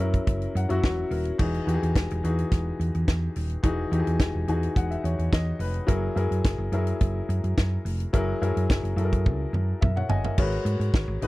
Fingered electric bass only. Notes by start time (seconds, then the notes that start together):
0.00 F#2
0.27 F#1
0.55 F#2
0.70 F#2
0.83 E1
1.11 D#1
1.39 E1
1.67 E2
1.83 E2
1.96 E1
2.12 E1
2.24 E2
2.52 E1
2.80 E2
2.95 E2
3.08 E2
3.36 D#1
3.64 E1
3.92 E2
4.07 E2
4.20 E1
4.35 E1
4.48 E2
4.76 E1
5.04 E2
5.19 E2
5.33 E2
5.59 F1
5.88 F#1
6.16 F#2
6.31 F#2
6.45 F#1
6.58 F#1
6.72 F#2
7.01 F#1
7.29 F#2
7.44 F#2
7.57 F#2
7.85 F1
8.14 F#1
8.42 F#2
8.57 F#2
8.70 F#1
8.83 F#1
8.96 F#2
9.26 C#2
9.53 F#2
9.83 F#2
10.09 G1
10.38 G#1
10.65 G#2
10.80 G#2
10.94 G#1
11.08 G#1
11.22 G#1